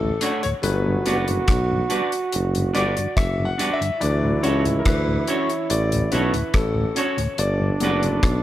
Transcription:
Already playing: A1 E4 A4
0.02 D2 A2
0.21 A3 C#4 D4 F#4 C#5, closed hi-hat
0.43 D2 A2 C#5, muted clean electric guitar stroke, closed hi-hat
0.62 G1 F#3 A3 B3 F#4 B4, closed hi-hat
0.87 G2 D3
1.06 F#1 G3 B3 D4 F#4 B4 D5, closed hi-hat
1.28 G2 D3, closed hi-hat
1.48 B1, kick, cross-stick, closed hi-hat
1.71 G2 D3
1.90 G3 B3 D4 F#4 B4 D5, closed hi-hat
2.12 closed hi-hat
2.32 F#1, closed hi-hat
2.55 G2 D3, closed hi-hat
2.74 G1 G3 B3 D4 F#4 B4 D5, closed hi-hat
2.96 G2 D3, muted clean electric guitar stroke, closed hi-hat
3.17 F#1 E5, kick, cross-stick, closed hi-hat
3.39 G2 D3
3.45 F#5
3.58 G3 B3 D4 F#4 B4 D5, closed hi-hat
3.73 E5
3.80 G2 D3, muted clean electric guitar stroke, closed hi-hat
4.00 D2 E3 F#3 D4 E4 D5, closed hi-hat
4.23 D2 A2
4.42 C#2 C#4 D4 F#4 A4 C#5, closed hi-hat
4.65 D2 A2, closed hi-hat
4.79 A#4
4.85 D2 B4, kick, cross-stick, closed hi-hat
5.07 D2 A2
5.27 C#4 D4 F#4 A4 C#5, closed hi-hat
5.50 closed hi-hat
5.70 A1 D5, closed hi-hat
5.92 D2 A2, closed hi-hat
6.11 B1 C#4 D4 F#4 A4 B4 C#5, closed hi-hat
6.33 D2 A2, muted clean electric guitar stroke, closed hi-hat
6.54 A1 A4, kick, cross-stick, closed hi-hat
6.75 D2 A2
6.95 C#4 D4 F#4 A4 C#5, closed hi-hat
7.17 D2 A2, muted clean electric guitar stroke, closed hi-hat
7.38 G1 D4 D5, closed hi-hat
7.60 G2 D3
7.80 F#1 F#3 G3 A3 B3 D4 F#4 B4, closed hi-hat
7.85 D5
8.03 G2 D3, closed hi-hat
8.23 B1, kick, cross-stick, closed hi-hat

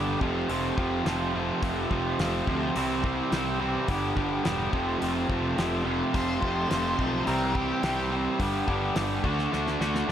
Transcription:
Already playing: G1 G2 D3 G3 B3 D4 G4
0.19 F1 F2 C3 F3 A3 C4 F4, kick
0.48 F1 F2 C3 F3 A3 C4 F4, open hi-hat
0.76 F1 F2 C3 F3 A3 C4 F4, kick
1.04 F1 F2 C3 F3 A3 C4 F4, snare, open hi-hat
1.32 F2 C3 F3 A3 C4 F4
1.61 F1 F2 C3 F3 A3 C4 F4, kick, open hi-hat
1.90 F1 F2 C3 F3 A3 C4 F4, kick
2.19 F1 F2 C3 F3 A3 C4 F4, snare, open hi-hat
2.47 D2 F2 C3 F3 A3 C4 F4, kick
2.75 C2 C3 E3 G3 C4 E4, open hi-hat
3.03 C3 E3 G3 C4 E4, kick
3.31 C2 C3 E3 G3 C4 E4, snare, open hi-hat
3.59 C3 E3 G3 C4 E4
3.87 G1 G2 D3 G3 B3 D4 G4, kick, open hi-hat
4.16 G1 G2 D3 G3 B3 D4 G4, kick
4.43 E1 G2 D3 G3 B3 D4 G4, snare, open hi-hat
4.72 F1 F2 C3 F3 A3 C4 F4, kick
5.01 F1 F2 C3 F3 A3 C4 F4, open hi-hat
5.29 F1 F2 C3 F3 A3 C4 F4, kick
5.57 F1 F2 C3 F3 A3 C4 F4, snare, open hi-hat
5.85 F2 C3 F3 A3 C4 F4
6.13 F1 F2 C3 F3 A3 C4 F4 C5, kick, open hi-hat
6.41 F1 F2 C3 F3 A3 C4 F4, kick
6.69 F1 F2 C3 F3 A3 C4 F4, snare, open hi-hat
6.98 B1 F2 C3 F3 A3 C4 F4, kick
7.26 C2 C3 E3 G3 C4 E4 A#4, open hi-hat
7.54 C3 E3 G3 C4 E4 G4, kick
7.82 C2 C3 E3 G3 C4 E4 G4, snare, open hi-hat
8.11 C3 E3 G3 C4 E4
8.39 G1 G2 D3 G3 B3 D4 G4, kick, open hi-hat
8.67 G1 G2 D3 G3 B3 D4 G4, kick
8.94 G1 G2 D3 G3 B3 D4 G4, snare, open hi-hat
9.23 D2 D3 A3 D4 F#4, kick
9.39 snare
9.51 D2 D3 A3 D4 F#4, snare
9.67 snare
9.80 D2 D3 A3 D4 F#4, snare
9.95 snare
10.08 D3 A3

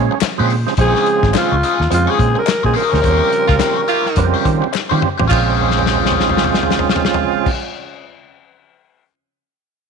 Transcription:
Already playing: C#3 F3 G#3 C#4
0.11 muted overdriven electric guitar stroke
0.21 muted fingered electric bass stroke, muted overdriven electric guitar stroke, snare, clap, closed hi-hat
0.38 A#2 C#3 F3 G#3 C4 C#4 G#4 C5
0.50 muted overdriven electric guitar stroke, open hi-hat
0.66 C#3 F3 G#3 C4, muted overdriven electric guitar stroke, snare
0.77 A#1 C#3 F3 G#3 C4 C#4 G#4 C5, kick, closed hi-hat
0.81 G#4
0.95 snare
1.06 closed hi-hat
1.23 G#1, muted overdriven electric guitar stroke, kick, snare
1.34 C#4 F4 G#4 C5, snare, clap, closed hi-hat
1.52 C#2, muted overdriven electric guitar stroke
1.63 C#4 G#4 C5, closed hi-hat
1.80 D#2, muted overdriven electric guitar stroke, snare
1.90 F2 C3 F3 G#3 C4 F4, muted overdriven electric guitar stroke, closed hi-hat
1.97 C#3
2.07 C#4 G#4 C#5
2.19 A#2, muted overdriven electric guitar stroke, kick, closed hi-hat
2.35 A#4, muted overdriven electric guitar stroke
2.46 muted overdriven electric guitar stroke, snare, clap, closed hi-hat
2.63 A#2 C#3 F3 G#3 C4 G#4, muted overdriven electric guitar stroke, kick
2.74 C#4 G#4 A#4 C5, open hi-hat
2.91 D2 C#3 F3 G#3 C4, muted overdriven electric guitar stroke, snare
3.02 D#2 C#3 F3 F#3 C4 C#4 G4 C5, kick, closed hi-hat
3.12 G3
3.32 closed hi-hat
3.48 C#2 F4, muted overdriven electric guitar stroke, kick, snare
3.59 C#4 G4 C5, snare, clap, closed hi-hat
3.77 muted overdriven electric guitar stroke
3.88 C#4 F4 G4 C5, closed hi-hat
4.06 muted overdriven electric guitar stroke, snare
4.16 F2 C#3 F3 G3 B3, muted overdriven electric guitar stroke, kick, closed hi-hat
4.24 C4
4.34 C#4 G4 C5
4.45 D#3, muted overdriven electric guitar stroke, kick, closed hi-hat
4.62 muted overdriven electric guitar stroke
4.73 muted overdriven electric guitar stroke, snare, clap
4.89 C#3 D#3 F3 G3 C4 C#4 G4 C5, high tom
5.00 muted overdriven electric guitar stroke, mid tom
5.18 A1 C#3 F3 G3 C4, muted overdriven electric guitar stroke, floor tom
5.28 A#1 C#3 F3 G#3 C4 C#4 F4 G#4, kick, clap, crash
5.33 C5
5.60 floor tom
5.71 snare
5.79 floor tom
5.86 snare
5.95 floor tom
6.05 snare
6.12 floor tom
6.20 snare
6.29 floor tom
6.37 snare
6.44 floor tom
6.54 snare
6.63 floor tom
6.71 snare
6.79 floor tom
6.89 snare
6.96 floor tom
7.05 snare
7.14 floor tom
7.46 kick, crash

